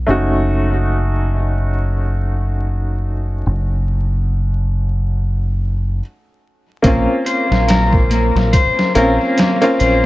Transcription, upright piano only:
0.06 5.99 A3 medium
0.06 5.99 C#4 medium
0.06 6.00 D#4 medium
0.06 6.01 F#4 medium
6.82 8.90 A#3 medium
6.82 8.91 C4 medium
6.82 8.92 C#4 medium
6.87 8.92 F4 medium
8.95 9.56 A#3 medium
8.95 9.56 C4 medium
8.95 9.57 C#4 medium
8.95 9.57 F4 loud
9.61 10.06 A#3 medium
9.61 10.06 C4 medium
9.61 10.06 C#4 medium
9.61 10.06 F4 loud

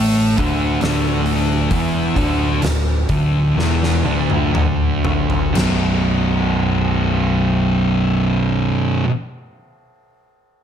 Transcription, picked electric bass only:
0.00 0.34 A1 medium
0.38 0.79 D1 loud
0.82 1.67 D1 medium
1.71 2.14 E1 medium
2.16 2.59 D1 medium
2.63 3.06 D1 medium
3.09 3.54 D1 medium
3.57 4.02 E1 medium
4.06 4.51 D1 medium
4.54 5.01 D1 medium
5.04 5.52 D1 medium
5.55 8.70 B0 medium

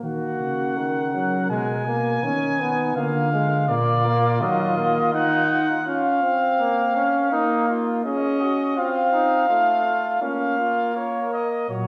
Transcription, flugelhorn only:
0.04 0.73 F#4 medium
0.77 2.21 A#4 medium
2.23 2.98 D#4 medium
2.96 5.86 F4 medium
5.87 6.33 F4 medium
6.59 6.93 A#3 loud
6.96 7.31 C#4 medium
7.32 7.67 D#4 loud
7.68 8.04 F4 medium
8.05 8.42 G#4 medium
8.41 8.76 F#4 medium
8.77 9.12 F4 medium
9.13 9.48 D#4 medium
9.49 9.85 F4 medium
9.86 10.23 F4 medium
10.22 10.58 C#4 medium
10.58 10.95 F4 medium
10.95 11.68 A#4 medium
11.69 11.87 C#5 medium

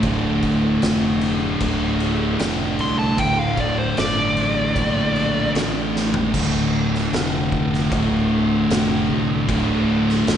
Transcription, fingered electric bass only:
0.03 0.78 D1 loud
0.82 1.57 F1 medium
1.60 2.36 D1 medium
2.40 2.77 F1 medium
2.79 3.17 C2 medium
3.18 3.93 D1 loud
3.98 4.35 G1 medium
4.37 4.74 A1 medium
4.76 5.51 A#1 medium
5.55 6.30 A1 medium
6.34 7.09 D1 loud
7.13 7.87 F1 medium
7.92 8.66 D1 loud
8.70 9.07 F1 loud
9.09 9.47 C2 medium
9.49 10.23 D1 loud
10.27 10.37 G1 loud

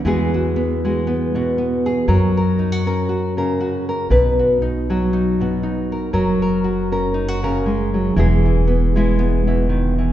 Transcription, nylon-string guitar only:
0.05 2.05 E3 medium
0.05 0.83 G#3 soft
0.05 0.55 B3 medium
0.05 0.34 F#4 soft
0.05 1.85 G#4 medium
0.34 0.85 F#4 soft
0.56 1.06 B3 soft
0.85 2.05 G#3 soft
0.85 1.35 F#4 medium
1.07 1.57 B3 soft
1.35 2.05 B2 soft
1.35 2.59 F#4 medium
1.58 2.08 B3 soft
1.86 2.08 G#4 soft
2.08 4.89 F#3 medium
2.08 2.36 A#4 medium
2.37 2.86 A#4 medium
2.59 2.72 D#4 soft
2.72 3.08 F#4 soft
2.86 4.08 C#4 soft
2.86 3.37 A#4 medium
3.09 3.60 F#4 soft
3.37 4.10 C#3 soft
3.37 3.88 A#4 soft
3.61 4.39 F#4 soft
3.89 4.08 A#4 soft
4.11 5.39 B2 medium
4.11 5.92 B4 medium
4.39 4.90 F#4 soft
4.62 5.12 D#4 medium
4.90 6.12 F#3 medium
4.90 5.40 F#4 soft
5.13 5.62 D#4 soft
5.40 6.11 B2 soft
5.40 6.11 F#4 soft
5.63 6.11 D#4 soft
5.92 6.11 A#4 soft
6.13 7.65 F#3 medium
6.13 6.41 A#4 medium
6.42 6.91 A#4 medium
6.64 7.14 F#4 soft
6.92 8.13 C#4 medium
6.92 7.43 A#4 medium
7.14 7.28 D#4 soft
7.28 8.16 F#4 soft
7.43 8.16 C#3 soft
7.43 8.14 A#4 medium
7.66 7.93 G#3 medium
7.94 8.16 F#3 soft
8.16 9.69 E3 medium
8.16 8.95 G#3 soft
8.16 8.66 B3 medium
8.16 8.44 E4 soft
8.16 10.13 G#4 medium
8.46 8.96 E4 soft
8.67 9.18 B3 soft
8.96 10.13 G#3 medium
8.96 9.46 E4 soft
9.19 10.13 B3 medium
9.47 10.13 B2 soft
9.47 10.13 E4 soft
9.69 9.98 D#3 medium
9.98 10.13 E3 soft

